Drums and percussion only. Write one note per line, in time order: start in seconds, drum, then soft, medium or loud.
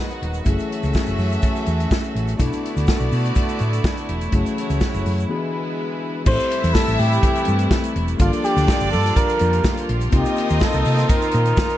0.10 closed hi-hat soft
0.10 shaker soft
0.23 closed hi-hat medium
0.34 closed hi-hat soft
0.34 shaker soft
0.45 kick loud
0.45 closed hi-hat medium
0.45 shaker medium
0.59 closed hi-hat soft
0.59 shaker medium
0.72 closed hi-hat medium
0.83 closed hi-hat soft
0.83 shaker medium
0.94 kick loud
0.94 snare medium
0.94 shaker medium
1.06 closed hi-hat soft
1.06 shaker medium
1.18 open hi-hat medium
1.18 shaker soft
1.32 closed hi-hat soft
1.32 shaker soft
1.42 kick loud
1.42 closed hi-hat medium
1.42 shaker medium
1.56 closed hi-hat soft
1.56 shaker soft
1.66 closed hi-hat medium
1.66 shaker medium
1.80 closed hi-hat soft
1.80 shaker medium
1.91 kick loud
1.91 snare loud
1.91 shaker medium
2.03 closed hi-hat soft
2.03 shaker soft
2.16 closed hi-hat medium
2.28 closed hi-hat soft
2.28 shaker medium
2.39 kick medium
2.39 closed hi-hat medium
2.39 shaker medium
2.53 closed hi-hat soft
2.53 shaker medium
2.65 closed hi-hat medium
2.77 closed hi-hat soft
2.77 shaker medium
2.87 kick loud
2.87 snare loud
2.87 shaker medium
3.00 closed hi-hat soft
3.00 shaker medium
3.12 open hi-hat medium
3.12 shaker soft
3.25 closed hi-hat soft
3.25 shaker soft
3.35 kick loud
3.35 closed hi-hat medium
3.35 shaker medium
3.49 closed hi-hat soft
3.49 shaker medium
3.59 closed hi-hat medium
3.59 shaker soft
3.73 closed hi-hat soft
3.73 shaker medium
3.84 kick loud
3.84 snare loud
3.84 shaker medium
3.97 closed hi-hat soft
3.97 shaker soft
4.09 closed hi-hat medium
4.21 closed hi-hat soft
4.21 shaker medium
4.32 kick loud
4.32 closed hi-hat medium
4.32 shaker medium
4.46 closed hi-hat soft
4.46 shaker medium
4.58 closed hi-hat medium
4.70 closed hi-hat soft
4.70 shaker medium
4.80 kick loud
4.80 snare medium
4.80 shaker medium
4.94 closed hi-hat soft
4.94 shaker medium
5.06 open hi-hat medium
5.06 shaker soft
5.18 closed hi-hat soft
5.18 shaker soft
6.26 kick loud
6.26 crash loud
6.26 shaker medium
6.40 closed hi-hat soft
6.40 shaker medium
6.51 closed hi-hat medium
6.51 shaker medium
6.64 closed hi-hat medium
6.64 shaker medium
6.74 kick loud
6.74 snare loud
6.74 shaker medium
6.87 closed hi-hat soft
6.87 shaker medium
7.00 open hi-hat medium
7.00 shaker soft
7.12 closed hi-hat soft
7.12 shaker soft
7.23 kick loud
7.23 closed hi-hat medium
7.23 shaker medium
7.35 closed hi-hat soft
7.35 shaker medium
7.45 closed hi-hat medium
7.45 shaker medium
7.59 closed hi-hat medium
7.59 shaker medium
7.71 kick loud
7.71 snare loud
7.71 shaker medium
7.84 closed hi-hat medium
7.84 shaker medium
7.96 closed hi-hat medium
8.08 closed hi-hat soft
8.08 shaker medium
8.19 kick loud
8.19 closed hi-hat medium
8.19 shaker medium
8.33 closed hi-hat soft
8.33 shaker medium
8.44 closed hi-hat medium
8.44 shaker medium
8.57 closed hi-hat soft
8.57 shaker medium
8.68 kick loud
8.68 snare loud
8.68 shaker medium
8.80 closed hi-hat soft
8.80 shaker medium
8.93 open hi-hat medium
8.93 shaker soft
9.05 snare soft
9.05 closed hi-hat soft
9.05 shaker medium
9.16 kick loud
9.16 closed hi-hat medium
9.16 shaker medium
9.29 closed hi-hat soft
9.29 shaker medium
9.39 closed hi-hat medium
9.39 shaker medium
9.53 closed hi-hat medium
9.53 shaker medium
9.64 kick loud
9.64 snare loud
9.64 shaker medium
9.77 closed hi-hat soft
9.77 shaker medium
9.89 closed hi-hat medium
10.01 closed hi-hat soft
10.01 shaker medium
10.12 kick loud
10.12 closed hi-hat medium
10.12 shaker medium
10.25 closed hi-hat soft
10.25 shaker medium
10.36 closed hi-hat medium
10.36 shaker medium
10.50 closed hi-hat medium
10.50 shaker medium
10.60 kick loud
10.60 snare loud
10.60 shaker medium
10.73 closed hi-hat soft
10.73 shaker medium
10.85 open hi-hat medium
10.85 shaker medium
10.98 snare soft
10.98 closed hi-hat soft
10.98 shaker medium
11.09 kick loud
11.09 closed hi-hat medium
11.09 shaker medium
11.22 closed hi-hat soft
11.22 shaker medium
11.31 closed hi-hat medium
11.31 shaker medium
11.45 closed hi-hat soft
11.45 shaker medium
11.57 kick loud
11.57 snare loud
11.57 shaker medium
11.70 closed hi-hat soft
11.70 shaker medium